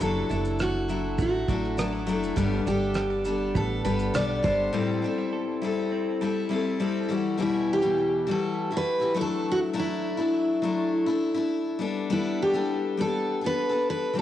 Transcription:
Already playing: F#4
0.00 F#1 F#3 D4 E4 A4, shaker
0.29 F#1 F#3 D4 E4 A4, shaker
0.45 shaker
0.59 F#4 A4, cross-stick, shaker
0.88 F#3 D4 E4 A4, shaker
1.18 A1 A3 F#4, kick, shaker
1.48 A1 F#3 D4 E4 A4, kick, shaker
1.64 cross-stick
1.77 F#3 D4 E4 A4, cross-stick, shaker
1.93 E4
2.07 F#1 F#3 A3 D4 E4 A4, shaker
2.23 shaker
2.36 G1 G3 B3 D4 A4, kick, shaker
2.67 G1 G3 B3 D4 G4 A4, shaker
2.94 G4, cross-stick, shaker
3.10 A4
3.25 G3 B3 D4 A4, shaker
3.55 A1 B3 A4, kick, shaker
3.85 G1 G3 B3 D4 A4 B4, shaker
3.99 shaker
4.14 B1 G3 B3 D4 A4 D5, cross-stick, shaker
4.42 G1 G3 B3 D4 A4 C5, kick, shaker
4.73 A2 G3 C4 E4 A4
5.02 G3 C4 D4 E4 A4
5.18 E4
5.33 A4
5.62 G3 C4 E4 A4
5.92 C4
6.21 G3 C4 E4 A4
6.49 G3 C4 E4 A4
6.80 G3 C4 E4 A4
7.09 E3 G3 E4 F#4
7.38 E2 B2 E3 G3 E4 F#4
7.42 E4
7.73 G4
7.82 E2 B2 E3 G3 E4
8.27 E3 G3 E4 F#4
8.31 A4
8.70 E3 G3 E4 F#4
8.77 B4
9.00 E3 G3 E4 F#4
9.14 F#3 A3 D4 E4
9.21 A4
9.52 F#4
9.73 F#3 A3 D4 E4
9.80 E4
10.17 F#3 A3 D4 E4
10.62 F#3 A3 D4 E4
11.06 A3 D4 E4
11.34 A3 D4 E4
11.79 G3 B3 D4 A4
12.10 G3 B3 D4 E4 A4
12.42 G4
12.53 G3 B3 D4 A4
12.98 G3 B3 D4 A4
13.41 B3 D4 A4
13.46 B4
13.69 B3 D4 A4
13.90 B4
14.13 E3 G3 C4 G4

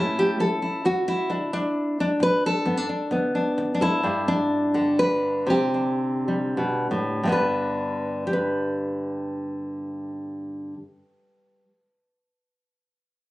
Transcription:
Already playing: A2 A3 C#4 E4
0.19 G4
0.40 A3 A4
0.62 E4
0.85 E2 F#4
1.08 E4
1.30 D3 D4
1.53 D4
2.00 D4
2.20 A2 B4
2.46 A4
2.65 G2 B3
2.77 D4
2.89 D4
3.11 D3 B3
3.35 D4
3.58 D3
3.74 D4
3.81 E4 A4
4.03 G2 D4
4.28 D4
4.74 D3
4.99 B4
5.47 C3 G4
5.74 D4
6.28 G3
6.57 B2
6.91 A2
7.23 G2 D3 B3
7.29 D4 B4
8.27 G4
8.33 B4

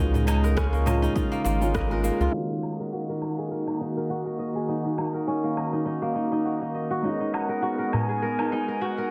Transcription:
Already playing: G#3 D#4 F#4 G#4 A#4 D#5
0.00 C#2 C#3 C#4 F4
0.14 D#4, darbuka dum, shaker
0.27 D#4, darbuka tek, low woodblock, shaker
0.44 A#4, cross-stick, darbuka ka, shaker
0.57 C#4, kick, cross-stick, shaker
0.73 A#3, shaker
0.86 G#3 C#4 F4 D#5, darbuka dum, low woodblock, shaker
1.02 D#4, shaker
1.16 D#4, kick, darbuka ka, shaker
1.32 A#3, shaker
1.44 G#1 A#3, darbuka tek, shaker
1.61 G#3 C#4 D#4 F4, shaker
1.74 D#5, kick, cross-stick, shaker
1.90 G#3 C#4 F4 A#4, shaker
2.04 A#3, darbuka tek, shaker
2.20 C#2 F4, darbuka tek, shaker
2.32 D#3 G#3 A#3 C#4 D#4 F#4, shaker
2.50 D#4
2.63 D#5, low woodblock, shaker
2.79 A#4, shaker
2.93 F#4
3.09 A#4
3.22 D#5, low woodblock, shaker
3.38 G#4
3.51 A#4, shaker
3.67 D#4, low woodblock, shaker
3.81 D#4
3.97 A#4
4.10 F#4, shaker
4.26 A#4
4.39 D#5, shaker
4.55 G#4
4.68 D#4, shaker
4.85 D#4, shaker
4.98 D#4, low woodblock, shaker
5.14 A#4, shaker
5.27 C#4
5.44 A#3
5.57 D#5, low woodblock, shaker
5.73 D#4, shaker
5.86 D#4, shaker
6.02 A#3, shaker
6.15 D#4, shaker
6.32 D#4, shaker
6.45 F#4, shaker
6.61 D#4, shaker
6.75 D#5, shaker
6.91 F#4, shaker
7.02 G#3 B3 C#4 D#4 F#4 A#4 F5, shaker
7.09 D#5
7.20 D#4, shaker
7.33 D#5 F#5, darbuka tek, low woodblock, shaker
7.49 A#4, shaker
7.62 F#4, shaker
7.79 A#4, shaker
7.92 D#5 G#5, darbuka dum, low woodblock, shaker
8.09 G#4, shaker
8.22 A#4, shaker
8.38 D#4, darbuka tek, low woodblock, shaker
8.52 D#4, darbuka tek, shaker
8.68 A#4, shaker
8.81 F#4 G#5, shaker
8.85 F#5
8.97 A#4, darbuka ka, shaker

